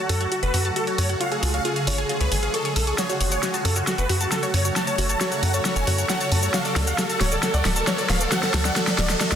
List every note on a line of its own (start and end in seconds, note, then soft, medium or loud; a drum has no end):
0.00 2.95 C#3 medium
0.00 1.17 F#3 medium
0.00 1.19 A3 medium
0.00 1.17 F#4 medium
0.00 1.17 A4 medium
0.09 0.27 F#2 loud
0.09 0.16 F#4 medium
0.09 0.18 A4 loud
0.09 open hi-hat loud
0.21 0.29 F#4 medium
0.21 0.24 C#5 medium
0.21 closed hi-hat soft
0.32 0.41 F#4 medium
0.32 0.36 F#4 medium
0.32 closed hi-hat medium
0.43 0.51 F#1 medium
0.43 0.52 B4 loud
0.43 0.49 F#5 medium
0.43 closed hi-hat soft
0.54 0.71 F#2 medium
0.54 0.63 F#4 medium
0.54 0.60 F#4 loud
0.54 open hi-hat loud
0.65 0.74 F#4 medium
0.65 0.75 A5 loud
0.65 closed hi-hat soft
0.76 0.83 F#4 medium
0.76 0.85 A4 medium
0.76 closed hi-hat medium
0.87 0.96 F#4 medium
0.87 0.97 C#5 medium
0.87 closed hi-hat soft
0.98 1.16 F#2 medium
0.98 1.05 F#4 medium
0.98 1.07 C#5 medium
0.98 open hi-hat loud
1.09 1.18 F#4 medium
1.09 1.13 F#5 medium
1.09 closed hi-hat soft
1.20 2.97 F3 medium
1.20 2.97 G#3 medium
1.20 2.97 F4 medium
1.20 1.24 F4 medium
1.20 2.97 G#4 medium
1.20 1.30 F5 loud
1.20 closed hi-hat medium
1.32 1.41 G#4 medium
1.32 1.38 G#5 medium
1.32 closed hi-hat soft
1.43 1.60 C#2 loud
1.43 1.49 F4 loud
1.43 1.52 G#4 medium
1.43 open hi-hat loud
1.54 1.64 C#5 medium
1.54 1.63 F5 medium
1.54 closed hi-hat soft
1.65 1.71 F4 loud
1.65 1.74 G#4 medium
1.65 closed hi-hat medium
1.76 1.85 G#4 medium
1.76 1.86 F5 medium
1.76 closed hi-hat soft
1.87 2.04 G#1 medium
1.87 1.94 F4 medium
1.87 1.96 C#5 loud
1.87 open hi-hat loud
1.98 2.07 G#4 medium
1.98 2.08 G#5 medium
1.98 closed hi-hat soft
2.09 2.13 F4 medium
2.09 2.18 G#4 medium
2.09 closed hi-hat medium
2.21 2.29 C#2 medium
2.21 2.29 B4 medium
2.21 2.27 C#5 medium
2.21 closed hi-hat soft
2.32 2.49 G#1 medium
2.32 2.41 G#4 medium
2.32 2.38 G#5 medium
2.32 open hi-hat loud
2.43 2.52 G#4 medium
2.43 2.49 F5 medium
2.43 closed hi-hat soft
2.54 2.63 A4 medium
2.54 2.60 C#6 medium
2.54 closed hi-hat medium
2.65 2.74 G#4 medium
2.65 2.72 C#5 medium
2.65 closed hi-hat soft
2.76 2.93 B1 medium
2.76 2.85 A4 medium
2.76 2.86 E6 medium
2.76 open hi-hat loud
2.87 2.96 G#4 medium
2.87 2.97 C#6 medium
2.87 closed hi-hat soft
2.98 6.50 C#3 medium
2.98 9.36 F#3 medium
2.98 9.36 A3 medium
2.98 9.36 F#4 medium
2.98 3.02 F#4 medium
2.98 9.36 A4 medium
2.98 3.07 C#5 loud
2.98 snare medium
2.98 closed hi-hat medium
2.98 riser medium
2.98 shaker medium
3.09 3.18 F#4 medium
3.09 3.19 C#5 medium
3.09 closed hi-hat soft
3.09 shaker soft
3.21 3.38 F#1 loud
3.21 3.29 F#4 medium
3.21 3.30 C#5 medium
3.21 open hi-hat loud
3.32 3.41 C#5 loud
3.32 3.41 F#5 medium
3.32 closed hi-hat soft
3.32 shaker medium
3.43 3.52 F#4 medium
3.43 3.49 F#4 medium
3.43 snare soft
3.43 closed hi-hat medium
3.43 shaker medium
3.54 3.63 F#4 medium
3.54 3.64 A5 medium
3.54 closed hi-hat soft
3.54 shaker soft
3.65 3.82 F#2 loud
3.65 3.72 F#4 medium
3.65 3.74 A4 medium
3.65 open hi-hat loud
3.76 3.85 F#4 medium
3.76 3.80 C#5 medium
3.76 closed hi-hat soft
3.76 shaker medium
3.87 3.96 F#4 medium
3.87 3.91 F#4 medium
3.87 snare medium
3.87 closed hi-hat medium
3.87 shaker medium
3.98 4.07 F#1 medium
3.98 4.07 B4 medium
3.98 4.05 F#5 medium
3.98 closed hi-hat soft
3.98 shaker soft
4.09 4.27 F#2 medium
4.09 4.18 F#4 medium
4.09 4.16 F#4 loud
4.09 open hi-hat loud
4.20 4.29 F#4 medium
4.20 4.30 A5 loud
4.20 closed hi-hat soft
4.20 shaker medium
4.32 4.38 F#4 medium
4.32 4.41 A4 medium
4.32 snare medium
4.32 closed hi-hat medium
4.32 shaker medium
4.43 4.52 F#4 medium
4.43 4.53 C#5 medium
4.43 closed hi-hat soft
4.43 shaker soft
4.54 4.71 F#2 medium
4.54 4.60 F#4 medium
4.54 4.63 C#5 medium
4.54 open hi-hat loud
4.65 4.74 F#4 medium
4.65 4.69 C#5 medium
4.65 closed hi-hat soft
4.65 shaker medium
4.76 4.80 F#4 medium
4.76 4.85 A5 loud
4.76 snare medium
4.76 closed hi-hat medium
4.76 shaker medium
4.87 4.96 C#5 medium
4.87 4.94 A5 medium
4.87 closed hi-hat soft
4.87 shaker soft
4.98 5.16 F#1 loud
4.98 5.05 F#4 loud
4.98 5.07 C#5 medium
4.98 open hi-hat loud
5.09 5.19 C#5 medium
5.09 5.18 A5 loud
5.09 closed hi-hat soft
5.09 shaker medium
5.21 5.27 F#4 loud
5.21 5.29 C#5 medium
5.21 snare medium
5.21 closed hi-hat medium
5.21 shaker medium
5.32 5.41 C#5 medium
5.32 5.41 F#5 medium
5.32 closed hi-hat soft
5.32 shaker soft
5.43 5.60 F#2 loud
5.43 5.49 F#4 medium
5.43 5.52 F#5 loud
5.43 open hi-hat loud
5.54 5.63 C#5 medium
5.54 5.64 A5 medium
5.54 closed hi-hat soft
5.54 shaker medium
5.65 5.69 F#4 medium
5.65 5.74 C#5 medium
5.65 snare medium
5.65 closed hi-hat medium
5.65 shaker medium
5.76 5.85 F#1 medium
5.76 5.83 C#5 medium
5.76 5.85 G#5 loud
5.76 closed hi-hat soft
5.76 shaker soft
5.87 6.04 F#2 loud
5.87 5.97 F#4 loud
5.87 5.96 C#5 medium
5.87 open hi-hat loud
5.98 6.07 C#5 medium
5.98 6.02 F#5 medium
5.98 closed hi-hat soft
5.98 shaker medium
6.09 6.13 F#4 loud
6.09 6.18 F#5 medium
6.09 snare medium
6.09 closed hi-hat medium
6.09 shaker medium
6.21 6.30 C#5 medium
6.21 6.30 A5 medium
6.21 closed hi-hat soft
6.21 shaker soft
6.32 6.49 F#2 medium
6.32 6.38 F#4 medium
6.32 6.41 A5 medium
6.32 open hi-hat loud
6.43 6.49 C#5 medium
6.43 6.52 C#5 medium
6.43 closed hi-hat soft
6.43 shaker medium
6.54 9.36 D3 medium
6.54 6.58 F#4 medium
6.54 6.63 F5 loud
6.54 snare medium
6.54 closed hi-hat medium
6.54 shaker medium
6.65 6.74 A4 medium
6.65 6.75 D5 medium
6.65 closed hi-hat soft
6.65 shaker soft
6.76 6.93 D2 loud
6.76 6.85 A4 medium
6.76 6.86 D5 medium
6.76 snare medium
6.76 open hi-hat loud
6.87 6.96 F5 loud
6.87 6.97 F#5 medium
6.87 closed hi-hat soft
6.87 shaker medium
6.98 7.05 F#4 medium
6.98 7.07 A4 medium
6.98 snare medium
6.98 closed hi-hat medium
6.98 shaker medium
7.09 7.18 A4 medium
7.09 7.19 A5 medium
7.09 closed hi-hat soft
7.09 shaker soft
7.21 7.38 D1 loud
7.21 7.27 F#4 medium
7.21 7.29 C#5 medium
7.21 snare medium
7.21 open hi-hat loud
7.32 7.41 A4 medium
7.32 7.36 D5 medium
7.32 closed hi-hat soft
7.32 shaker medium
7.43 7.47 F#4 medium
7.43 7.52 A4 medium
7.43 snare medium
7.43 closed hi-hat medium
7.43 shaker medium
7.54 7.63 D2 medium
7.54 7.63 D5 medium
7.54 7.60 F#5 medium
7.54 closed hi-hat soft
7.54 shaker soft
7.65 7.82 D1 loud
7.65 7.72 F#4 loud
7.65 7.74 A4 medium
7.65 snare medium
7.65 open hi-hat loud
7.76 7.85 A4 medium
7.76 7.86 A5 loud
7.76 closed hi-hat soft
7.76 shaker medium
7.87 7.94 F#4 medium
7.87 7.96 C#5 medium
7.87 snare medium
7.87 closed hi-hat medium
7.87 shaker medium
7.98 8.07 A4 medium
7.98 8.08 D5 medium
7.98 closed hi-hat soft
7.98 shaker soft
8.09 8.27 D1 medium
8.09 8.16 F#4 medium
8.09 8.18 F5 medium
8.09 snare medium
8.09 open hi-hat loud
8.21 8.30 A4 medium
8.21 8.24 D5 medium
8.21 closed hi-hat soft
8.21 shaker medium
8.32 8.36 F#4 medium
8.32 8.41 F#5 loud
8.32 snare medium
8.32 closed hi-hat medium
8.32 shaker medium
8.43 8.52 A4 medium
8.43 8.49 A5 medium
8.43 snare medium
8.43 closed hi-hat soft
8.43 shaker soft
8.54 8.71 D2 loud
8.54 8.60 F#4 loud
8.54 8.63 A4 medium
8.54 snare medium
8.54 open hi-hat loud
8.65 8.75 D5 medium
8.65 8.74 F#5 loud
8.65 snare medium
8.65 closed hi-hat soft
8.65 shaker medium
8.76 8.83 F#4 loud
8.76 8.85 A4 medium
8.76 snare medium
8.76 closed hi-hat medium
8.76 shaker soft
8.87 8.96 A4 medium
8.87 8.97 F#5 medium
8.87 snare medium
8.87 closed hi-hat soft
8.87 shaker soft
8.98 9.16 D1 loud
8.98 9.05 F#4 medium
8.98 9.07 D5 loud
8.98 snare loud
8.98 open hi-hat loud
9.09 9.18 A4 medium
9.09 9.19 A5 medium
9.09 snare medium
9.09 closed hi-hat soft
9.09 shaker medium
9.21 9.24 F#4 medium
9.21 9.30 A4 medium
9.21 snare loud
9.21 closed hi-hat medium
9.21 swell medium
9.21 shaker medium
9.32 9.36 D2 medium
9.32 9.36 D5 medium
9.32 9.36 F5 medium
9.32 snare loud
9.32 closed hi-hat soft
9.32 shaker soft